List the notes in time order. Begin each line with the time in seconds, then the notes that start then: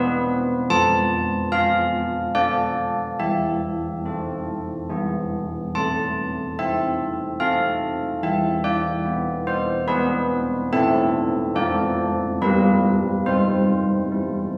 Already playing: E3 B3 G#4 B4
0.70 F3 A5
1.52 D4 F5
2.35 D4 A4 D5
3.20 E3 E5
4.05 C4 A4
4.90 E3 B3 G#4
5.75 A3 A5
6.59 C4 E5
7.40 C4 A4 F5
8.23 E3 E5
8.64 D5
9.06 B3
9.47 C5
9.88 B3 G#4 B4
10.73 A3 C4 A4 E5
11.55 F3 D4 A4 D5
12.42 G3 F4 G4 B4
13.26 C4 C5
14.12 E4